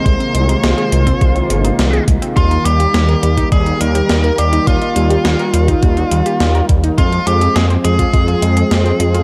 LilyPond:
<<
  \new Staff \with { instrumentName = "Lead electric guitar" } { \time 4/4 \key ees \mixolydian \tempo 4 = 104 c''2.~ c''8 r8 | f'8 g'4. aes'8 bes'4 g'8 | f'2.~ f'8 r8 | f'8 g'8 aes'8 aes'2~ aes'8 | }
  \new Staff \with { instrumentName = "Synth arpeggio sound" } { \time 4/4 \key ees \mixolydian aes16 c'16 aes16 ees'16 aes16 aes'16 aes16 c'16 aes16 c'16 aes16 ees'16 aes16 aes'16 aes16 c'16 | g16 ees'16 g16 g'16 g16 bes'16 g16 ees'16 g16 ees'16 g16 g'16 g16 bes'16 g16 ees'16 | g16 ees'16 g16 g'16 g16 bes'16 g16 ees'16 g16 ees'16 g16 g'16 g16 bes'16 g16 ees'16 | aes16 f'16 aes16 aes'16 aes16 c''16 aes16 f'16 aes16 f'16 aes16 aes'16 aes16 c''16 aes16 f'16 | }
  \new Staff \with { instrumentName = "Analog synth pad" } { \clef bass \time 4/4 \key ees \mixolydian << { <c f'>1 | g1~ | g1 | <aes c'>1 | } \\ { <ees aes bes>1~ | <ees aes bes>1~ | <ees aes bes>1 | f1 | } >> }
  \new Staff \with { instrumentName = "Detuned saw bass" } { \clef bass \time 4/4 \key ees \mixolydian c,8 c,8 c,8 c,8 c,8 g,,8 c,8 c,8 | ees,8 ees,8 ees,8 ees,8 ees,8 ees,8 ees,8 ees,8 | ees,8 ees,8 ees,8 ees,8 ees,8 ees,8 ees,8 ees,8 | f,8 f,8 f,8 f,8 f,8 f,8 f,8 f,8 | }
  \new DrumStaff \with { instrumentName = "Drums" } \drummode { \time 4/4 <hh bd>16 hh16 hh16 hh16 <hh sn>16 hh16 hh16 <hh bd>16 <hh bd>16 hh16 hh16 hh16 <hh sn>16 hh16 <hh bd>16 hh16 | <hh bd>16 hh16 hh16 hh16 <hh sn>16 hh16 hh16 <hh bd>16 <hh bd>16 hh16 hh16 hh16 <hh sn>16 hh16 hh16 hh16 | <hh bd>16 hh16 hh16 hh16 <hh sn>16 hh16 hh16 <hh bd>16 <hh bd>16 hh16 hh16 hh16 <hh sn>16 hh16 <hh bd>16 hh16 | <hh bd>16 hh16 hh16 hh16 <hh sn>16 hh16 hh16 <hh bd>16 <hh bd>16 hh16 hh16 hh16 <hh sn>16 hh16 hh16 hh16 | }
>>